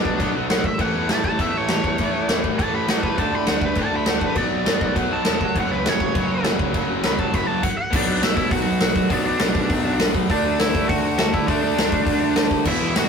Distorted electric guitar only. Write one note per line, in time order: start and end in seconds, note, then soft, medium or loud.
0.00 0.18 B2 medium
0.00 0.19 F#3 medium
0.00 0.19 B3 medium
0.19 0.48 B2 loud
0.19 0.48 F#3 loud
0.19 0.46 B3 loud
0.48 0.64 B2 medium
0.48 0.64 F#3 medium
0.48 0.63 B3 medium
0.78 1.07 A2 medium
0.78 1.07 E3 medium
0.78 1.07 A3 loud
1.07 1.38 A2 medium
1.07 1.37 E3 loud
1.07 1.39 A3 medium
1.39 1.68 A2 medium
1.39 1.68 E3 loud
1.39 1.68 A3 loud
1.68 1.98 A2 medium
1.68 2.00 E3 medium
1.68 2.00 A3 medium
1.99 2.29 A2 loud
1.99 2.28 E3 loud
1.99 2.27 A3 loud
2.28 2.58 A2 medium
2.28 2.59 E3 medium
2.28 2.60 A3 medium
2.59 2.87 A2 medium
2.59 2.87 E3 loud
2.59 2.86 A3 medium
2.87 3.17 A2 medium
2.87 3.17 E3 medium
2.87 3.16 A3 loud
3.17 3.47 D3 medium
3.17 3.47 A3 loud
3.17 3.46 D4 medium
3.47 3.76 D3 medium
3.47 3.77 A3 medium
3.47 3.77 D4 loud
3.77 4.06 D3 medium
3.77 4.06 A3 loud
3.77 4.05 D4 loud
4.06 4.36 D3 medium
4.06 4.36 A3 medium
4.06 4.35 D4 loud
4.37 4.66 B2 medium
4.37 4.65 F#3 loud
4.37 4.64 B3 loud
4.65 4.94 B2 medium
4.65 4.96 F#3 medium
4.65 4.96 B3 medium
4.95 5.25 B2 medium
4.95 5.26 F#3 loud
4.95 5.23 B3 loud
5.24 5.40 B2 medium
5.24 5.55 F#3 medium
5.24 5.39 B3 loud
5.53 5.85 F#2 loud
5.53 5.84 C#3 loud
5.53 5.84 F#3 loud
5.84 6.12 F#2 medium
5.84 6.13 C#3 medium
5.84 6.14 F#3 loud
6.14 6.43 F#2 loud
6.14 6.42 C#3 loud
6.14 6.42 F#3 loud
6.43 6.71 F#2 medium
6.43 6.72 C#3 medium
6.43 6.73 F#3 medium
6.72 7.04 F#2 medium
6.72 7.03 C#3 loud
6.72 7.02 F#3 loud
7.03 7.32 F#2 medium
7.03 7.33 C#3 medium
7.03 7.34 F#3 loud
7.33 7.62 F#2 medium
7.33 7.62 C#3 loud
7.33 7.63 F#3 loud
7.91 9.08 B2 loud
7.91 9.10 F#3 medium
7.95 9.11 B3 loud
9.09 10.27 B2 medium
9.09 10.30 F#3 loud
9.09 10.29 B3 loud
10.28 11.44 D3 loud
10.28 11.46 A3 loud
10.28 11.48 D4 loud
11.45 12.64 D3 medium
11.45 12.65 A3 loud
11.45 12.66 D4 loud
12.63 13.09 E2 medium
12.63 13.09 B2 medium
12.63 13.09 E3 loud